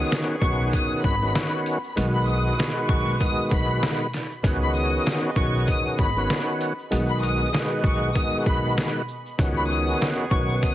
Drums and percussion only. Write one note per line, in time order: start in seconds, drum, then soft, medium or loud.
0.11 snare loud
0.11 closed hi-hat medium
0.11 shaker medium
0.29 shaker medium
0.42 kick loud
0.42 shaker medium
0.60 shaker medium
0.73 kick medium
0.73 closed hi-hat medium
0.73 shaker medium
0.92 shaker medium
1.04 kick loud
1.04 shaker medium
1.22 shaker medium
1.35 snare loud
1.35 closed hi-hat medium
1.35 shaker medium
1.53 shaker medium
1.66 closed hi-hat medium
1.66 shaker medium
1.84 shaker medium
1.96 closed hi-hat loud
1.96 shaker medium
2.15 shaker soft
2.27 shaker medium
2.29 shaker medium
2.46 shaker medium
2.59 snare loud
2.59 closed hi-hat medium
2.59 shaker medium
2.77 shaker medium
2.89 kick loud
2.89 shaker medium
3.08 shaker medium
3.20 kick medium
3.20 closed hi-hat medium
3.20 shaker medium
3.39 shaker soft
3.51 kick loud
3.51 shaker medium
3.70 shaker medium
3.82 snare loud
3.82 closed hi-hat medium
3.82 shaker medium
4.00 shaker medium
4.13 snare soft
4.13 closed hi-hat medium
4.13 shaker medium
4.31 shaker medium
4.44 kick loud
4.44 closed hi-hat loud
4.44 shaker medium
4.63 shaker soft
4.74 shaker medium
4.76 shaker medium
4.93 shaker medium
5.06 snare loud
5.06 closed hi-hat medium
5.06 shaker medium
5.24 shaker medium
5.36 kick loud
5.36 shaker medium
5.55 shaker medium
5.67 kick medium
5.67 closed hi-hat medium
5.67 shaker medium
5.86 shaker medium
5.98 kick loud
5.98 shaker medium
6.17 shaker medium
6.29 snare loud
6.29 closed hi-hat medium
6.29 shaker medium
6.48 shaker medium
6.61 closed hi-hat medium
6.61 shaker medium
6.79 shaker medium
6.91 closed hi-hat loud
6.91 shaker medium
7.10 shaker soft
7.22 closed hi-hat medium
7.22 shaker medium
7.41 shaker medium
7.53 snare loud
7.53 closed hi-hat medium
7.53 shaker medium
7.72 shaker medium
7.84 kick loud
7.84 shaker medium
8.03 shaker medium
8.15 kick medium
8.15 closed hi-hat medium
8.15 shaker medium
8.34 shaker soft
8.46 kick loud
8.46 shaker medium
8.64 shaker medium
8.77 snare loud
8.77 closed hi-hat medium
8.77 shaker medium
8.95 shaker medium
9.08 shaker soft
9.08 shaker medium
9.26 shaker medium
9.39 kick loud
9.39 closed hi-hat loud
9.39 shaker medium
9.57 shaker soft
9.69 shaker medium
9.71 shaker medium
9.88 shaker medium
10.01 snare loud
10.01 closed hi-hat medium
10.01 shaker medium
10.19 shaker medium
10.31 kick loud
10.31 shaker medium
10.50 shaker medium
10.63 kick medium
10.63 closed hi-hat medium
10.63 shaker medium